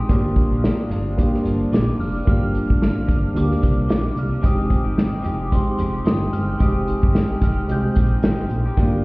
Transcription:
Already playing: C4 D#4 G4 G#4
0.00 G#3
0.09 G1 G2 F3 A#3 D4 F4 G4, kick, closed hi-hat
0.36 kick, closed hi-hat
0.52 A#1 F3 A#3 D4
0.64 snare, closed hi-hat
0.90 G1 G2 F3 A#3 D4, closed hi-hat
1.17 A#3 D4 F4 G4, kick, closed hi-hat
1.34 snare
1.44 G1 G2 F3 A#3 D4, closed hi-hat
1.72 A#1 G2 F3 A#3 D4 D6, snare, closed hi-hat
1.99 F1 F6, open hi-hat
2.14 F3 A#3 D4
2.25 G1 G2 F3 A#3 D4 F4 G4, kick, closed hi-hat
2.29 F6
2.55 closed hi-hat
2.67 G#1 F3 A#3 D4, kick
2.82 F6, snare, closed hi-hat
3.07 G1 G2 F3 A#3 D4, kick, closed hi-hat
3.34 D2 A#3 D4 F4 G4 D6, closed hi-hat
3.51 snare
3.62 C2 G2 F3 A#3 D4, kick, closed hi-hat
3.88 A#1 G2 F3 A#3 D4 D6, snare, closed hi-hat
4.16 C2 F6, closed hi-hat
4.29 F3 A#3 D4
4.42 F1 F3 G#3 C4 D#4 G4 D#6, kick, closed hi-hat
4.46 G4
4.70 kick, closed hi-hat
4.83 G#1 G#3 D#4 G4
4.98 snare, closed hi-hat
5.22 F1 F3 G#3 D#4 G4, closed hi-hat
5.27 D6
5.52 G#3 C4 D#4 G4 C6, kick, closed hi-hat
5.78 F1 F3 G#3 D#4 G4, closed hi-hat
6.05 G1 F3 G#3 D#4 G4 D#6, snare, closed hi-hat
6.33 G1 F6, closed hi-hat
6.48 G#3 D#4 G4
6.59 F1 F3 G#3 C4 D#4 G4 D#6, kick, closed hi-hat
6.87 closed hi-hat
7.02 G1 G#3 D#4 G4, kick
7.15 snare, closed hi-hat
7.42 F1 F3 G#3 D#4 G4 F6, kick, closed hi-hat
7.68 C2 G#3 C4 D#4 G4 G6, closed hi-hat
7.95 A#1 F3 G#3 D#4 G4, kick, closed hi-hat
8.23 G#1 F3 G#3 D#4 G4, snare, closed hi-hat
8.50 A#1, closed hi-hat
8.66 G#3 D#4 G4
8.77 G1 G2 F3 A#3 D4 F4 G4, kick, closed hi-hat

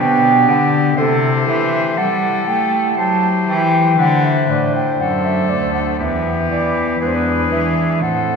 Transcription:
Already playing: B3 D4 G4
0.00 B2 G4 G5
0.48 D3 F#5
0.93 A3 E4 G4 C5
0.97 C3 A4
1.48 E3 E5
1.98 G3 A4 F#5
2.47 A3 G5
2.97 F#3 C5 A5
3.47 E3 G5
3.93 A3 D4 C5
3.98 D3 B4 F#5
4.24 E5
4.49 A2 D5
4.76 G5
4.98 F#2 A4 F#5
5.25 E5
5.49 D2 D5
5.74 F#5
5.96 E2 B3 G4 B4
6.01 E5
6.49 E3 D5
6.96 G#3 D4 B4
7.01 E2 G#4 B4
7.07 C5
7.15 B4
7.51 E3 E5
7.98 A3 C4 C5
8.02 A2 A4 F#5

